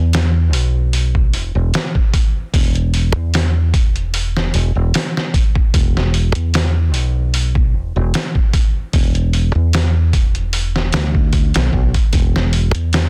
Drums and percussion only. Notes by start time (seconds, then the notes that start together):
0.13 snare, open hi-hat
0.53 open hi-hat
0.93 open hi-hat
1.15 kick
1.34 open hi-hat
1.74 snare, open hi-hat
1.95 kick
2.14 kick, open hi-hat
2.54 kick, open hi-hat
2.75 closed hi-hat
2.94 open hi-hat
3.34 snare, open hi-hat
3.74 kick, open hi-hat
3.96 closed hi-hat
4.14 open hi-hat
4.37 snare
4.54 open hi-hat
4.94 snare, open hi-hat
5.17 snare
5.34 kick, open hi-hat
5.55 kick
5.74 kick, open hi-hat
5.97 snare
6.14 open hi-hat
6.35 closed hi-hat
6.54 snare, open hi-hat
6.94 open hi-hat
7.34 open hi-hat
7.55 kick
8.14 snare, open hi-hat
8.35 kick
8.53 kick, open hi-hat
8.93 kick, open hi-hat
9.15 closed hi-hat
9.33 open hi-hat
9.73 snare, open hi-hat
10.13 kick, open hi-hat
10.35 closed hi-hat
10.53 open hi-hat
10.76 snare
10.93 snare, open hi-hat
11.15 kick
11.33 kick, open hi-hat
11.54 snare, open hi-hat
11.73 kick
11.94 kick, open hi-hat
12.13 kick, open hi-hat
12.36 snare
12.53 open hi-hat
12.75 closed hi-hat
12.93 snare, open hi-hat